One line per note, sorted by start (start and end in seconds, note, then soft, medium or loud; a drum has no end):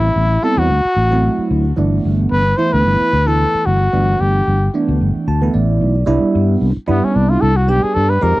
0.00 0.26 G3 medium
0.00 0.26 B3 medium
0.00 0.26 C4 medium
0.00 0.26 E4 medium
0.00 0.45 E4 medium
0.16 0.36 A1 medium
0.43 0.70 G3 medium
0.43 0.70 B3 medium
0.43 0.70 C4 medium
0.43 0.71 E4 medium
0.43 0.60 A4 medium
0.57 0.67 E2 medium
0.57 1.51 F#4 medium
0.69 0.81 D2 medium
0.85 muted fretless electric bass stroke soft
0.96 1.28 A1 medium
1.11 1.63 F#3 medium
1.11 1.63 A3 medium
1.11 1.64 C4 medium
1.11 1.64 E4 medium
1.38 muted fretless electric bass stroke soft
1.51 1.71 D2 medium
1.76 1.98 G1 medium
1.76 2.40 E3 medium
1.76 2.41 A3 medium
1.76 2.41 B3 medium
1.76 2.41 D4 medium
2.05 2.25 G1 medium
2.32 2.52 G1 medium
2.32 2.59 B4 medium
2.57 3.10 E3 medium
2.57 3.10 A3 medium
2.57 3.11 B3 medium
2.57 3.11 E4 medium
2.57 2.74 C5 medium
2.73 2.83 D2 medium
2.73 3.29 B4 medium
2.86 2.97 G1 medium
3.01 muted fretless electric bass stroke soft
3.13 3.44 D2 medium
3.26 3.78 E3 medium
3.26 3.79 A3 medium
3.26 3.79 B3 medium
3.26 3.79 E4 medium
3.26 3.68 A4 medium
3.55 muted fretless electric bass stroke soft
3.66 3.87 G1 medium
3.66 4.22 F#4 medium
3.93 4.14 G1 medium
3.93 4.56 E3 medium
3.93 4.56 A3 medium
3.93 4.56 B3 medium
3.93 4.57 D4 medium
4.21 4.41 G1 medium
4.21 4.74 G4 medium
4.47 4.67 G1 medium
4.74 5.26 E3 medium
4.74 5.26 A3 medium
4.74 5.26 B3 medium
4.74 5.27 D4 medium
4.88 4.98 D2 medium
5.01 5.12 G1 medium
5.15 muted fretless electric bass stroke soft
5.28 5.48 D2 medium
5.28 5.53 A5 medium
5.41 5.94 E3 medium
5.41 5.94 A3 medium
5.41 5.94 B3 medium
5.41 5.94 E4 medium
5.54 5.79 A1 medium
5.54 6.04 D5 medium
5.81 6.05 B1 medium
6.06 6.19 C2 medium
6.06 6.70 G3 medium
6.06 6.70 B3 medium
6.06 6.71 D4 medium
6.06 6.71 E4 loud
6.23 muted fretless electric bass stroke soft
6.35 6.55 G2 medium
6.61 6.72 C2 medium
6.77 muted fretless electric bass stroke soft
6.87 7.00 G2 medium
6.87 7.51 G3 medium
6.87 7.51 B3 medium
6.87 7.06 B3 medium
6.87 7.51 D4 medium
6.87 7.51 E4 medium
7.04 7.17 C#4 medium
7.04 muted fretless electric bass stroke soft
7.16 7.36 C2 medium
7.16 7.31 D4 medium
7.30 7.43 F4 medium
7.41 7.69 C2 medium
7.41 7.58 A4 medium
7.56 7.71 F#4 medium
7.67 7.80 B1 medium
7.67 8.11 G3 medium
7.67 8.11 B3 medium
7.67 8.11 D4 medium
7.67 8.12 G4 medium
7.67 7.85 G4 medium
7.83 7.96 G#4 medium
7.94 8.16 G2 medium
7.94 8.11 A4 medium
8.10 8.25 B4 medium
8.21 8.34 F2 medium
8.21 8.40 G#3 medium
8.21 8.40 C4 medium
8.21 8.40 D#4 medium
8.21 8.40 G4 medium
8.21 8.40 A#4 medium